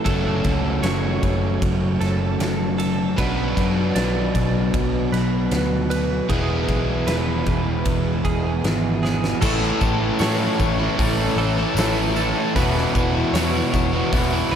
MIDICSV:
0, 0, Header, 1, 8, 480
1, 0, Start_track
1, 0, Key_signature, 3, "major"
1, 0, Tempo, 781250
1, 34, Time_signature, 4, 2, 24, 8
1, 8942, End_track
2, 0, Start_track
2, 0, Title_t, "Clean electric guitar"
2, 0, Program_c, 0, 27
2, 0, Note_on_c, 0, 69, 85
2, 0, Note_on_c, 0, 73, 81
2, 30, Note_off_c, 0, 69, 0
2, 30, Note_on_c, 0, 69, 92
2, 507, Note_off_c, 0, 69, 0
2, 509, Note_off_c, 0, 73, 0
2, 509, Note_on_c, 0, 73, 80
2, 989, Note_off_c, 0, 73, 0
2, 1232, Note_on_c, 0, 69, 67
2, 1703, Note_off_c, 0, 69, 0
2, 1711, Note_on_c, 0, 69, 78
2, 1949, Note_off_c, 0, 69, 0
2, 1954, Note_on_c, 0, 71, 88
2, 2428, Note_on_c, 0, 74, 82
2, 2907, Note_off_c, 0, 74, 0
2, 3148, Note_off_c, 0, 71, 0
2, 3148, Note_on_c, 0, 71, 70
2, 3626, Note_off_c, 0, 71, 0
2, 3626, Note_on_c, 0, 71, 77
2, 3868, Note_on_c, 0, 68, 84
2, 4344, Note_off_c, 0, 71, 0
2, 4344, Note_on_c, 0, 71, 75
2, 4347, Note_off_c, 0, 68, 0
2, 4826, Note_off_c, 0, 71, 0
2, 5067, Note_on_c, 0, 68, 65
2, 5540, Note_off_c, 0, 68, 0
2, 5547, Note_on_c, 0, 68, 75
2, 5782, Note_off_c, 0, 68, 0
2, 5785, Note_on_c, 0, 69, 91
2, 6265, Note_off_c, 0, 69, 0
2, 6267, Note_on_c, 0, 73, 90
2, 6749, Note_off_c, 0, 73, 0
2, 6992, Note_on_c, 0, 69, 75
2, 7467, Note_off_c, 0, 69, 0
2, 7475, Note_on_c, 0, 69, 79
2, 7713, Note_off_c, 0, 69, 0
2, 7716, Note_on_c, 0, 71, 98
2, 8192, Note_off_c, 0, 71, 0
2, 8195, Note_on_c, 0, 73, 94
2, 8676, Note_off_c, 0, 73, 0
2, 8917, Note_on_c, 0, 71, 75
2, 8942, Note_off_c, 0, 71, 0
2, 8942, End_track
3, 0, Start_track
3, 0, Title_t, "Overdriven electric guitar"
3, 0, Program_c, 1, 29
3, 3889, Note_on_c, 1, 68, 113
3, 5786, Note_off_c, 1, 68, 0
3, 5806, Note_on_c, 1, 64, 100
3, 6040, Note_off_c, 1, 64, 0
3, 6042, Note_on_c, 1, 64, 85
3, 6285, Note_off_c, 1, 64, 0
3, 6287, Note_on_c, 1, 64, 98
3, 6386, Note_off_c, 1, 64, 0
3, 6388, Note_on_c, 1, 64, 79
3, 6401, Note_on_c, 1, 61, 75
3, 6409, Note_on_c, 1, 57, 59
3, 6511, Note_off_c, 1, 57, 0
3, 6513, Note_off_c, 1, 61, 0
3, 6520, Note_off_c, 1, 64, 0
3, 6632, Note_on_c, 1, 64, 77
3, 6869, Note_off_c, 1, 64, 0
3, 6871, Note_on_c, 1, 64, 79
3, 6994, Note_on_c, 1, 52, 85
3, 7000, Note_on_c, 1, 57, 82
3, 7008, Note_on_c, 1, 61, 90
3, 7013, Note_off_c, 1, 64, 0
3, 7015, Note_on_c, 1, 64, 85
3, 7118, Note_off_c, 1, 64, 0
3, 7120, Note_on_c, 1, 64, 79
3, 7125, Note_off_c, 1, 61, 0
3, 7133, Note_off_c, 1, 57, 0
3, 7242, Note_off_c, 1, 52, 0
3, 7256, Note_off_c, 1, 64, 0
3, 7258, Note_on_c, 1, 64, 110
3, 7501, Note_off_c, 1, 64, 0
3, 7503, Note_on_c, 1, 64, 90
3, 7600, Note_off_c, 1, 64, 0
3, 7602, Note_on_c, 1, 64, 73
3, 7737, Note_off_c, 1, 64, 0
3, 7981, Note_on_c, 1, 64, 91
3, 7985, Note_on_c, 1, 66, 89
3, 8219, Note_off_c, 1, 64, 0
3, 8222, Note_off_c, 1, 66, 0
3, 8321, Note_on_c, 1, 66, 71
3, 8333, Note_on_c, 1, 64, 68
3, 8339, Note_on_c, 1, 59, 59
3, 8340, Note_on_c, 1, 52, 59
3, 8443, Note_off_c, 1, 59, 0
3, 8446, Note_off_c, 1, 52, 0
3, 8447, Note_off_c, 1, 64, 0
3, 8451, Note_off_c, 1, 66, 0
3, 8922, Note_on_c, 1, 52, 79
3, 8942, Note_off_c, 1, 52, 0
3, 8942, End_track
4, 0, Start_track
4, 0, Title_t, "Overdriven electric guitar"
4, 0, Program_c, 2, 29
4, 29, Note_on_c, 2, 42, 88
4, 32, Note_on_c, 2, 49, 85
4, 35, Note_on_c, 2, 54, 84
4, 38, Note_on_c, 2, 57, 96
4, 40, Note_on_c, 2, 61, 95
4, 43, Note_on_c, 2, 66, 97
4, 1931, Note_off_c, 2, 42, 0
4, 1932, Note_off_c, 2, 49, 0
4, 1935, Note_off_c, 2, 57, 0
4, 1936, Note_off_c, 2, 61, 0
4, 1944, Note_on_c, 2, 47, 86
4, 1945, Note_off_c, 2, 54, 0
4, 1948, Note_on_c, 2, 54, 92
4, 1955, Note_on_c, 2, 59, 96
4, 1956, Note_on_c, 2, 62, 103
4, 1957, Note_off_c, 2, 66, 0
4, 1959, Note_on_c, 2, 66, 101
4, 3850, Note_off_c, 2, 47, 0
4, 3852, Note_off_c, 2, 54, 0
4, 3856, Note_off_c, 2, 62, 0
4, 3857, Note_off_c, 2, 66, 0
4, 3862, Note_on_c, 2, 40, 92
4, 3865, Note_on_c, 2, 47, 92
4, 3868, Note_off_c, 2, 59, 0
4, 3868, Note_on_c, 2, 52, 96
4, 3870, Note_on_c, 2, 56, 100
4, 3872, Note_on_c, 2, 59, 102
4, 3874, Note_on_c, 2, 64, 104
4, 5772, Note_off_c, 2, 40, 0
4, 5774, Note_off_c, 2, 47, 0
4, 5775, Note_off_c, 2, 52, 0
4, 5776, Note_off_c, 2, 56, 0
4, 5777, Note_off_c, 2, 59, 0
4, 5778, Note_off_c, 2, 64, 0
4, 5783, Note_on_c, 2, 45, 100
4, 5785, Note_on_c, 2, 52, 108
4, 5788, Note_on_c, 2, 57, 99
4, 5793, Note_on_c, 2, 61, 116
4, 5795, Note_on_c, 2, 69, 112
4, 6022, Note_off_c, 2, 52, 0
4, 6024, Note_off_c, 2, 57, 0
4, 6025, Note_on_c, 2, 52, 82
4, 6026, Note_off_c, 2, 61, 0
4, 6032, Note_off_c, 2, 69, 0
4, 6032, Note_on_c, 2, 57, 75
4, 6034, Note_on_c, 2, 61, 73
4, 6039, Note_on_c, 2, 69, 83
4, 6134, Note_off_c, 2, 69, 0
4, 6141, Note_on_c, 2, 69, 75
4, 6144, Note_off_c, 2, 61, 0
4, 6149, Note_off_c, 2, 57, 0
4, 6151, Note_on_c, 2, 61, 65
4, 6156, Note_on_c, 2, 57, 62
4, 6255, Note_off_c, 2, 45, 0
4, 6262, Note_off_c, 2, 57, 0
4, 6263, Note_on_c, 2, 45, 88
4, 6265, Note_off_c, 2, 61, 0
4, 6266, Note_off_c, 2, 52, 0
4, 6267, Note_off_c, 2, 69, 0
4, 6268, Note_on_c, 2, 52, 101
4, 6270, Note_on_c, 2, 57, 101
4, 6272, Note_on_c, 2, 61, 101
4, 6275, Note_on_c, 2, 69, 106
4, 6503, Note_off_c, 2, 52, 0
4, 6503, Note_off_c, 2, 57, 0
4, 6506, Note_off_c, 2, 61, 0
4, 6506, Note_on_c, 2, 52, 72
4, 6510, Note_off_c, 2, 69, 0
4, 6510, Note_on_c, 2, 57, 82
4, 6514, Note_on_c, 2, 61, 87
4, 6518, Note_on_c, 2, 69, 87
4, 6616, Note_off_c, 2, 69, 0
4, 6623, Note_off_c, 2, 61, 0
4, 6623, Note_on_c, 2, 69, 77
4, 6630, Note_off_c, 2, 57, 0
4, 6630, Note_on_c, 2, 61, 69
4, 6637, Note_on_c, 2, 57, 56
4, 6737, Note_off_c, 2, 57, 0
4, 6738, Note_off_c, 2, 52, 0
4, 6741, Note_on_c, 2, 52, 73
4, 6743, Note_off_c, 2, 61, 0
4, 6745, Note_on_c, 2, 57, 77
4, 6747, Note_off_c, 2, 45, 0
4, 6747, Note_off_c, 2, 69, 0
4, 6751, Note_on_c, 2, 61, 80
4, 6754, Note_on_c, 2, 69, 76
4, 6855, Note_off_c, 2, 69, 0
4, 6861, Note_off_c, 2, 61, 0
4, 6863, Note_on_c, 2, 69, 64
4, 6868, Note_off_c, 2, 57, 0
4, 6868, Note_on_c, 2, 61, 69
4, 6876, Note_on_c, 2, 57, 57
4, 7102, Note_off_c, 2, 69, 0
4, 7109, Note_off_c, 2, 61, 0
4, 7110, Note_on_c, 2, 69, 83
4, 7116, Note_off_c, 2, 57, 0
4, 7116, Note_on_c, 2, 61, 76
4, 7123, Note_on_c, 2, 57, 65
4, 7230, Note_on_c, 2, 45, 106
4, 7231, Note_off_c, 2, 57, 0
4, 7233, Note_off_c, 2, 52, 0
4, 7233, Note_off_c, 2, 61, 0
4, 7235, Note_off_c, 2, 69, 0
4, 7236, Note_on_c, 2, 52, 95
4, 7239, Note_on_c, 2, 57, 105
4, 7241, Note_on_c, 2, 61, 103
4, 7242, Note_on_c, 2, 69, 114
4, 7468, Note_off_c, 2, 57, 0
4, 7470, Note_off_c, 2, 52, 0
4, 7473, Note_off_c, 2, 61, 0
4, 7473, Note_on_c, 2, 52, 74
4, 7476, Note_on_c, 2, 57, 80
4, 7480, Note_off_c, 2, 69, 0
4, 7480, Note_on_c, 2, 61, 76
4, 7488, Note_on_c, 2, 69, 82
4, 7583, Note_off_c, 2, 69, 0
4, 7590, Note_on_c, 2, 69, 73
4, 7591, Note_off_c, 2, 61, 0
4, 7597, Note_off_c, 2, 57, 0
4, 7599, Note_on_c, 2, 61, 70
4, 7604, Note_on_c, 2, 57, 58
4, 7697, Note_off_c, 2, 69, 0
4, 7698, Note_off_c, 2, 45, 0
4, 7702, Note_off_c, 2, 61, 0
4, 7704, Note_off_c, 2, 57, 0
4, 7712, Note_on_c, 2, 40, 95
4, 7715, Note_off_c, 2, 52, 0
4, 7716, Note_on_c, 2, 47, 94
4, 7717, Note_on_c, 2, 52, 96
4, 7718, Note_on_c, 2, 59, 105
4, 7723, Note_on_c, 2, 64, 115
4, 7723, Note_on_c, 2, 66, 117
4, 7945, Note_off_c, 2, 52, 0
4, 7945, Note_off_c, 2, 59, 0
4, 7947, Note_on_c, 2, 52, 89
4, 7952, Note_off_c, 2, 64, 0
4, 7952, Note_on_c, 2, 59, 73
4, 7955, Note_on_c, 2, 64, 83
4, 7957, Note_off_c, 2, 66, 0
4, 7960, Note_on_c, 2, 66, 87
4, 8067, Note_off_c, 2, 66, 0
4, 8070, Note_on_c, 2, 66, 74
4, 8072, Note_off_c, 2, 59, 0
4, 8074, Note_off_c, 2, 64, 0
4, 8077, Note_on_c, 2, 64, 70
4, 8079, Note_on_c, 2, 59, 66
4, 8080, Note_off_c, 2, 52, 0
4, 8083, Note_on_c, 2, 52, 65
4, 8184, Note_off_c, 2, 40, 0
4, 8186, Note_off_c, 2, 47, 0
4, 8191, Note_off_c, 2, 59, 0
4, 8192, Note_off_c, 2, 52, 0
4, 8192, Note_on_c, 2, 40, 84
4, 8193, Note_on_c, 2, 47, 91
4, 8194, Note_on_c, 2, 52, 93
4, 8198, Note_off_c, 2, 64, 0
4, 8199, Note_off_c, 2, 66, 0
4, 8199, Note_on_c, 2, 59, 99
4, 8201, Note_on_c, 2, 64, 106
4, 8202, Note_on_c, 2, 66, 98
4, 8426, Note_off_c, 2, 52, 0
4, 8429, Note_off_c, 2, 59, 0
4, 8429, Note_on_c, 2, 52, 72
4, 8434, Note_off_c, 2, 64, 0
4, 8437, Note_on_c, 2, 59, 83
4, 8437, Note_on_c, 2, 64, 85
4, 8440, Note_off_c, 2, 66, 0
4, 8443, Note_on_c, 2, 66, 82
4, 8551, Note_off_c, 2, 64, 0
4, 8553, Note_off_c, 2, 66, 0
4, 8555, Note_on_c, 2, 66, 71
4, 8558, Note_on_c, 2, 64, 74
4, 8559, Note_off_c, 2, 59, 0
4, 8561, Note_off_c, 2, 52, 0
4, 8567, Note_on_c, 2, 59, 65
4, 8568, Note_on_c, 2, 52, 65
4, 8670, Note_off_c, 2, 52, 0
4, 8674, Note_off_c, 2, 59, 0
4, 8675, Note_off_c, 2, 40, 0
4, 8676, Note_off_c, 2, 47, 0
4, 8677, Note_on_c, 2, 52, 69
4, 8678, Note_off_c, 2, 64, 0
4, 8681, Note_on_c, 2, 59, 80
4, 8685, Note_off_c, 2, 66, 0
4, 8685, Note_on_c, 2, 64, 72
4, 8687, Note_on_c, 2, 66, 93
4, 8793, Note_off_c, 2, 66, 0
4, 8795, Note_on_c, 2, 66, 80
4, 8796, Note_off_c, 2, 64, 0
4, 8799, Note_off_c, 2, 59, 0
4, 8801, Note_off_c, 2, 52, 0
4, 8803, Note_on_c, 2, 64, 65
4, 8806, Note_on_c, 2, 59, 65
4, 8808, Note_on_c, 2, 52, 60
4, 8942, Note_off_c, 2, 52, 0
4, 8942, Note_off_c, 2, 59, 0
4, 8942, Note_off_c, 2, 64, 0
4, 8942, Note_off_c, 2, 66, 0
4, 8942, End_track
5, 0, Start_track
5, 0, Title_t, "Distorted electric guitar"
5, 0, Program_c, 3, 30
5, 6746, Note_on_c, 3, 45, 77
5, 7696, Note_off_c, 3, 45, 0
5, 8673, Note_on_c, 3, 40, 84
5, 8688, Note_on_c, 3, 47, 90
5, 8942, Note_off_c, 3, 40, 0
5, 8942, Note_off_c, 3, 47, 0
5, 8942, End_track
6, 0, Start_track
6, 0, Title_t, "Picked electric bass"
6, 0, Program_c, 4, 34
6, 36, Note_on_c, 4, 30, 83
6, 245, Note_off_c, 4, 30, 0
6, 276, Note_on_c, 4, 37, 84
6, 485, Note_off_c, 4, 37, 0
6, 502, Note_on_c, 4, 30, 90
6, 717, Note_off_c, 4, 30, 0
6, 757, Note_on_c, 4, 30, 97
6, 965, Note_off_c, 4, 30, 0
6, 996, Note_on_c, 4, 30, 86
6, 1204, Note_off_c, 4, 30, 0
6, 1236, Note_on_c, 4, 30, 80
6, 1444, Note_off_c, 4, 30, 0
6, 1472, Note_on_c, 4, 30, 99
6, 1891, Note_off_c, 4, 30, 0
6, 1952, Note_on_c, 4, 35, 86
6, 2160, Note_off_c, 4, 35, 0
6, 2195, Note_on_c, 4, 42, 81
6, 2402, Note_off_c, 4, 42, 0
6, 2433, Note_on_c, 4, 35, 83
6, 2641, Note_off_c, 4, 35, 0
6, 2671, Note_on_c, 4, 35, 88
6, 2880, Note_off_c, 4, 35, 0
6, 2911, Note_on_c, 4, 35, 86
6, 3120, Note_off_c, 4, 35, 0
6, 3150, Note_on_c, 4, 35, 84
6, 3359, Note_off_c, 4, 35, 0
6, 3390, Note_on_c, 4, 38, 95
6, 3810, Note_off_c, 4, 38, 0
6, 3866, Note_on_c, 4, 28, 87
6, 4077, Note_off_c, 4, 28, 0
6, 4107, Note_on_c, 4, 35, 81
6, 4318, Note_off_c, 4, 35, 0
6, 4346, Note_on_c, 4, 28, 81
6, 4557, Note_off_c, 4, 28, 0
6, 4586, Note_on_c, 4, 28, 86
6, 4797, Note_off_c, 4, 28, 0
6, 4826, Note_on_c, 4, 28, 80
6, 5038, Note_off_c, 4, 28, 0
6, 5068, Note_on_c, 4, 28, 82
6, 5279, Note_off_c, 4, 28, 0
6, 5309, Note_on_c, 4, 32, 98
6, 5731, Note_off_c, 4, 32, 0
6, 5787, Note_on_c, 4, 33, 89
6, 5959, Note_off_c, 4, 33, 0
6, 6032, Note_on_c, 4, 33, 89
6, 6202, Note_off_c, 4, 33, 0
6, 6269, Note_on_c, 4, 45, 94
6, 6441, Note_off_c, 4, 45, 0
6, 6509, Note_on_c, 4, 33, 105
6, 6680, Note_off_c, 4, 33, 0
6, 6752, Note_on_c, 4, 33, 90
6, 6923, Note_off_c, 4, 33, 0
6, 6981, Note_on_c, 4, 33, 88
6, 7156, Note_off_c, 4, 33, 0
6, 7220, Note_on_c, 4, 33, 103
6, 7567, Note_off_c, 4, 33, 0
6, 7716, Note_on_c, 4, 28, 92
6, 7887, Note_off_c, 4, 28, 0
6, 7955, Note_on_c, 4, 28, 93
6, 8126, Note_off_c, 4, 28, 0
6, 8191, Note_on_c, 4, 40, 92
6, 8364, Note_off_c, 4, 40, 0
6, 8440, Note_on_c, 4, 28, 93
6, 8610, Note_off_c, 4, 28, 0
6, 8678, Note_on_c, 4, 28, 91
6, 8849, Note_off_c, 4, 28, 0
6, 8923, Note_on_c, 4, 28, 85
6, 8942, Note_off_c, 4, 28, 0
6, 8942, End_track
7, 0, Start_track
7, 0, Title_t, "Muted overdriven electric guitar strokes"
7, 6518, Note_on_c, 9, 29, 49
7, 6579, Note_off_c, 9, 29, 0
7, 8448, Note_on_c, 9, 29, 49
7, 8510, Note_off_c, 9, 29, 0
7, 8942, End_track
8, 0, Start_track
8, 0, Title_t, "Drums"
8, 36, Note_on_c, 9, 51, 86
8, 37, Note_on_c, 9, 36, 106
8, 97, Note_off_c, 9, 51, 0
8, 98, Note_off_c, 9, 36, 0
8, 273, Note_on_c, 9, 51, 64
8, 275, Note_on_c, 9, 36, 83
8, 335, Note_off_c, 9, 51, 0
8, 337, Note_off_c, 9, 36, 0
8, 513, Note_on_c, 9, 51, 80
8, 517, Note_on_c, 9, 38, 102
8, 574, Note_off_c, 9, 51, 0
8, 579, Note_off_c, 9, 38, 0
8, 755, Note_on_c, 9, 36, 85
8, 755, Note_on_c, 9, 51, 64
8, 817, Note_off_c, 9, 36, 0
8, 817, Note_off_c, 9, 51, 0
8, 996, Note_on_c, 9, 36, 105
8, 996, Note_on_c, 9, 51, 81
8, 1057, Note_off_c, 9, 36, 0
8, 1057, Note_off_c, 9, 51, 0
8, 1237, Note_on_c, 9, 51, 61
8, 1242, Note_on_c, 9, 38, 30
8, 1299, Note_off_c, 9, 51, 0
8, 1304, Note_off_c, 9, 38, 0
8, 1477, Note_on_c, 9, 51, 77
8, 1482, Note_on_c, 9, 38, 93
8, 1538, Note_off_c, 9, 51, 0
8, 1543, Note_off_c, 9, 38, 0
8, 1718, Note_on_c, 9, 51, 74
8, 1779, Note_off_c, 9, 51, 0
8, 1954, Note_on_c, 9, 36, 103
8, 1956, Note_on_c, 9, 51, 86
8, 2016, Note_off_c, 9, 36, 0
8, 2017, Note_off_c, 9, 51, 0
8, 2194, Note_on_c, 9, 36, 83
8, 2197, Note_on_c, 9, 51, 71
8, 2255, Note_off_c, 9, 36, 0
8, 2258, Note_off_c, 9, 51, 0
8, 2432, Note_on_c, 9, 51, 83
8, 2437, Note_on_c, 9, 38, 101
8, 2493, Note_off_c, 9, 51, 0
8, 2498, Note_off_c, 9, 38, 0
8, 2672, Note_on_c, 9, 36, 84
8, 2673, Note_on_c, 9, 51, 73
8, 2734, Note_off_c, 9, 36, 0
8, 2735, Note_off_c, 9, 51, 0
8, 2912, Note_on_c, 9, 36, 115
8, 2912, Note_on_c, 9, 51, 94
8, 2973, Note_off_c, 9, 36, 0
8, 2974, Note_off_c, 9, 51, 0
8, 3156, Note_on_c, 9, 51, 68
8, 3161, Note_on_c, 9, 38, 29
8, 3218, Note_off_c, 9, 51, 0
8, 3223, Note_off_c, 9, 38, 0
8, 3388, Note_on_c, 9, 51, 82
8, 3393, Note_on_c, 9, 38, 92
8, 3450, Note_off_c, 9, 51, 0
8, 3455, Note_off_c, 9, 38, 0
8, 3632, Note_on_c, 9, 51, 73
8, 3694, Note_off_c, 9, 51, 0
8, 3868, Note_on_c, 9, 36, 97
8, 3869, Note_on_c, 9, 51, 80
8, 3930, Note_off_c, 9, 36, 0
8, 3931, Note_off_c, 9, 51, 0
8, 4107, Note_on_c, 9, 51, 61
8, 4108, Note_on_c, 9, 36, 85
8, 4169, Note_off_c, 9, 36, 0
8, 4169, Note_off_c, 9, 51, 0
8, 4348, Note_on_c, 9, 51, 85
8, 4353, Note_on_c, 9, 38, 96
8, 4409, Note_off_c, 9, 51, 0
8, 4414, Note_off_c, 9, 38, 0
8, 4586, Note_on_c, 9, 51, 64
8, 4588, Note_on_c, 9, 36, 85
8, 4648, Note_off_c, 9, 51, 0
8, 4649, Note_off_c, 9, 36, 0
8, 4826, Note_on_c, 9, 51, 86
8, 4828, Note_on_c, 9, 36, 106
8, 4888, Note_off_c, 9, 51, 0
8, 4889, Note_off_c, 9, 36, 0
8, 5068, Note_on_c, 9, 36, 71
8, 5068, Note_on_c, 9, 51, 65
8, 5129, Note_off_c, 9, 36, 0
8, 5130, Note_off_c, 9, 51, 0
8, 5311, Note_on_c, 9, 51, 73
8, 5316, Note_on_c, 9, 38, 105
8, 5373, Note_off_c, 9, 51, 0
8, 5378, Note_off_c, 9, 38, 0
8, 5558, Note_on_c, 9, 38, 58
8, 5620, Note_off_c, 9, 38, 0
8, 5677, Note_on_c, 9, 38, 77
8, 5738, Note_off_c, 9, 38, 0
8, 5786, Note_on_c, 9, 54, 68
8, 5790, Note_on_c, 9, 36, 118
8, 5791, Note_on_c, 9, 49, 115
8, 5847, Note_off_c, 9, 54, 0
8, 5852, Note_off_c, 9, 36, 0
8, 5853, Note_off_c, 9, 49, 0
8, 5916, Note_on_c, 9, 38, 34
8, 5977, Note_off_c, 9, 38, 0
8, 6026, Note_on_c, 9, 54, 72
8, 6030, Note_on_c, 9, 36, 87
8, 6087, Note_off_c, 9, 54, 0
8, 6092, Note_off_c, 9, 36, 0
8, 6260, Note_on_c, 9, 54, 86
8, 6272, Note_on_c, 9, 46, 62
8, 6277, Note_on_c, 9, 38, 120
8, 6322, Note_off_c, 9, 54, 0
8, 6334, Note_off_c, 9, 46, 0
8, 6339, Note_off_c, 9, 38, 0
8, 6509, Note_on_c, 9, 54, 70
8, 6511, Note_on_c, 9, 36, 89
8, 6571, Note_off_c, 9, 54, 0
8, 6572, Note_off_c, 9, 36, 0
8, 6753, Note_on_c, 9, 36, 114
8, 6754, Note_on_c, 9, 46, 69
8, 6814, Note_off_c, 9, 36, 0
8, 6816, Note_off_c, 9, 46, 0
8, 6991, Note_on_c, 9, 54, 30
8, 7052, Note_off_c, 9, 54, 0
8, 7230, Note_on_c, 9, 54, 106
8, 7237, Note_on_c, 9, 46, 64
8, 7242, Note_on_c, 9, 38, 106
8, 7291, Note_off_c, 9, 54, 0
8, 7299, Note_off_c, 9, 46, 0
8, 7304, Note_off_c, 9, 38, 0
8, 7473, Note_on_c, 9, 54, 82
8, 7534, Note_off_c, 9, 54, 0
8, 7716, Note_on_c, 9, 54, 87
8, 7717, Note_on_c, 9, 36, 118
8, 7717, Note_on_c, 9, 46, 63
8, 7778, Note_off_c, 9, 36, 0
8, 7778, Note_off_c, 9, 54, 0
8, 7779, Note_off_c, 9, 46, 0
8, 7848, Note_on_c, 9, 38, 33
8, 7910, Note_off_c, 9, 38, 0
8, 7957, Note_on_c, 9, 36, 91
8, 7958, Note_on_c, 9, 54, 80
8, 8019, Note_off_c, 9, 36, 0
8, 8019, Note_off_c, 9, 54, 0
8, 8201, Note_on_c, 9, 46, 62
8, 8202, Note_on_c, 9, 54, 98
8, 8206, Note_on_c, 9, 38, 117
8, 8263, Note_off_c, 9, 46, 0
8, 8264, Note_off_c, 9, 54, 0
8, 8268, Note_off_c, 9, 38, 0
8, 8440, Note_on_c, 9, 36, 92
8, 8443, Note_on_c, 9, 54, 73
8, 8502, Note_off_c, 9, 36, 0
8, 8505, Note_off_c, 9, 54, 0
8, 8680, Note_on_c, 9, 36, 121
8, 8681, Note_on_c, 9, 46, 64
8, 8741, Note_off_c, 9, 36, 0
8, 8742, Note_off_c, 9, 46, 0
8, 8942, End_track
0, 0, End_of_file